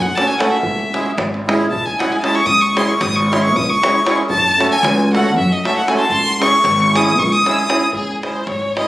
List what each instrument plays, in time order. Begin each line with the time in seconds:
0.02 violin F#5
0.15 accordion A3 C#4 F#4 A4, violin A5, davul high
0.27 violin G#5, davul high
0.39 accordion A3 C#4 F#4 A4, violin F#5, davul high
0.50 violin E5, davul high
0.63 upright bass C#2, davul low
0.79 davul high
0.92 accordion G#3 C#4 E4 G#4, davul high
1.06 davul high
1.18 upright bass G#1, davul high
1.34 davul high
1.47 accordion G#3 C#4 E4 G#4, davul high
1.61 davul high
1.70 upright bass C#2, violin A5, davul low
1.85 violin G#5
1.98 accordion G#3 C#4 E4 G#4, violin F#5, davul high
2.12 violin G#5, davul high
2.22 accordion G#3 C#4 E4 G#4, violin A5, davul high
2.35 violin C#6, davul high
2.46 upright bass C#2, violin D#6, davul low
2.61 violin C#6, davul high
2.75 accordion G#3 C#4 E4 G#4, violin C6, davul high
2.89 violin C#6, davul high
3.00 upright bass G#1, violin D#6, davul high
3.16 violin C#6, davul high
3.30 accordion G#3 C#4 E4 G#4, violin C6, davul high
3.43 violin C#6, davul high
3.56 upright bass C#2, violin D#6, davul low
3.70 violin C#6
3.82 accordion G#3 C#4 E4 G#4, davul high
3.95 davul high
4.04 accordion G#3 C#4 E4 G#4, davul high
4.18 davul high
4.29 upright bass F#2, violin A5, davul low
4.45 davul high
4.57 accordion A3 C#4 F#4 A4, davul high
4.72 violin G#5, davul high
4.83 upright bass C#2, davul high
4.99 davul high
5.12 accordion A3 C#4 F#4 A4, violin F#5, davul high
5.27 davul high
5.37 upright bass F#2, violin E5, davul low
5.52 violin D#5
5.64 accordion A3 C#4 F#4 A4, violin E5, davul high
5.77 violin F#5, davul high
5.87 accordion A3 C#4 F#4 A4, violin G#5, davul high
5.96 violin A5 C6, davul high
6.09 upright bass C#2, violin C6, davul low
6.39 accordion G#3 C#4 E4 G#4, violin C#6, davul high
6.53 davul high
6.64 upright bass G#1, davul high
6.80 davul high
6.93 accordion G#3 C#4 E4 G#4, violin D#6, davul high
7.19 upright bass C#2, violin C#6, davul low
7.32 violin D#6, davul high
7.46 accordion G#3 C#4 E4 G#4, violin E6, davul high
7.58 violin D#6, davul high
7.68 accordion G#3 C#4 E4 G#4, davul high
7.81 davul high
7.92 upright bass C#2, violin G#4, davul low
8.22 accordion G#3 C#4 E4 G#4, violin C5, davul high
8.47 upright bass G#1, violin C#5, davul high
8.62 davul high
8.77 accordion G#3 C#4 E4 G#4, violin D#5, davul high